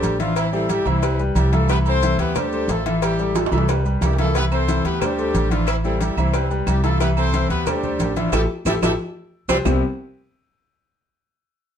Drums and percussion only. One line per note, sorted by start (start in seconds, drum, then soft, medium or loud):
0.03 cowbell medium
0.03 high conga medium
0.03 low agogo medium
0.03 maracas medium
0.20 cowbell medium
0.20 high conga medium
0.20 low agogo medium
0.20 maracas soft
0.36 cowbell loud
0.36 low agogo loud
0.36 maracas medium
0.53 high conga soft
0.53 maracas soft
0.69 cowbell medium
0.69 high conga medium
0.69 low agogo medium
0.69 maracas medium
0.86 high conga soft
0.86 low agogo loud
0.86 maracas soft
1.02 cowbell loud
1.02 high conga soft
1.02 low agogo medium
1.02 maracas medium
1.19 high conga soft
1.19 maracas soft
1.36 cowbell medium
1.36 high conga medium
1.36 low agogo loud
1.36 maracas medium
1.53 cowbell medium
1.53 high conga medium
1.53 low agogo medium
1.53 maracas soft
1.69 cowbell loud
1.69 high conga soft
1.69 low agogo loud
1.69 maracas medium
1.86 high conga soft
1.86 low agogo loud
1.86 maracas soft
2.03 cowbell medium
2.03 high conga medium
2.03 maracas medium
2.19 cowbell medium
2.19 high conga soft
2.19 low agogo medium
2.19 maracas soft
2.35 cowbell loud
2.35 high conga soft
2.35 low conga medium
2.35 low agogo loud
2.35 maracas medium
2.52 high conga soft
2.52 maracas soft
2.69 cowbell medium
2.69 high conga medium
2.69 low timbale medium
2.69 low agogo medium
2.69 maracas medium
2.86 cowbell medium
2.86 high conga medium
2.86 low agogo medium
2.86 maracas soft
3.02 cowbell loud
3.02 low agogo loud
3.02 maracas medium
3.19 high conga soft
3.19 maracas soft
3.35 cowbell medium
3.35 high conga medium
3.35 high timbale loud
3.35 low agogo medium
3.35 maracas medium
3.46 high timbale loud
3.52 high conga soft
3.52 low agogo loud
3.52 maracas soft
3.58 high timbale loud
3.69 cowbell loud
3.69 low timbale medium
3.69 low agogo medium
3.69 maracas medium
3.85 high conga soft
3.85 maracas soft
4.02 cowbell medium
4.02 high conga medium
4.02 low timbale loud
4.02 low agogo loud
4.02 maracas medium
4.13 low timbale medium
4.18 cowbell medium
4.18 high conga medium
4.18 low agogo medium
4.18 maracas soft
4.24 low timbale medium
4.35 cowbell loud
4.35 high conga soft
4.35 low agogo medium
4.35 maracas medium
4.52 high conga soft
4.52 low agogo loud
4.52 claves medium
4.52 maracas soft
4.68 cowbell medium
4.68 high conga loud
4.68 maracas medium
4.85 cowbell medium
4.85 high conga soft
4.85 low agogo medium
4.85 maracas soft
5.01 cowbell loud
5.01 high conga soft
5.01 low conga medium
5.01 low agogo loud
5.01 claves medium
5.01 maracas medium
5.18 high conga soft
5.18 maracas soft
5.35 cowbell medium
5.35 high conga medium
5.35 low agogo medium
5.35 maracas medium
5.51 cowbell medium
5.51 high conga medium
5.51 low agogo medium
5.51 maracas soft
5.67 cowbell loud
5.67 low agogo loud
5.67 claves medium
5.67 maracas medium
5.84 high conga soft
5.84 maracas soft
6.01 cowbell medium
6.01 high conga medium
6.01 low agogo medium
6.01 maracas medium
6.17 high conga soft
6.17 low agogo loud
6.17 claves medium
6.17 maracas soft
6.34 cowbell loud
6.34 high conga soft
6.34 low agogo medium
6.34 maracas medium
6.51 high conga soft
6.51 maracas soft
6.67 cowbell medium
6.67 high conga medium
6.67 low agogo loud
6.67 claves medium
6.67 maracas medium
6.84 cowbell medium
6.84 low agogo medium
6.84 maracas soft
7.00 cowbell loud
7.00 low agogo medium
7.00 maracas medium
7.17 high conga soft
7.17 low agogo loud
7.17 claves medium
7.17 maracas soft
7.33 cowbell medium
7.33 high conga medium
7.33 maracas medium
7.50 cowbell medium
7.50 high conga soft
7.50 low agogo medium
7.50 maracas soft
7.66 cowbell loud
7.66 high conga soft
7.66 low conga medium
7.66 low agogo loud
7.66 claves medium
7.66 maracas medium
7.83 high conga soft
7.83 low conga medium
7.83 maracas soft
8.00 cowbell medium
8.00 high conga medium
8.00 low timbale medium
8.00 low agogo medium
8.00 maracas medium
8.16 cowbell medium
8.16 high conga medium
8.16 low agogo medium
8.16 maracas soft
8.33 cowbell loud
8.33 high conga loud
8.33 high timbale loud
8.33 claves loud
8.33 maracas loud
8.66 cowbell loud
8.66 high conga medium
8.66 high timbale loud
8.66 claves loud
8.66 maracas loud
8.83 cowbell medium
8.83 high conga loud
8.83 high timbale loud
8.83 claves loud
8.83 maracas loud
9.49 cowbell medium
9.49 high conga medium
9.49 high timbale loud
9.49 claves loud
9.49 maracas loud
9.65 low bongo loud
9.65 low conga loud
9.65 low timbale loud
9.65 claves loud
9.65 maracas loud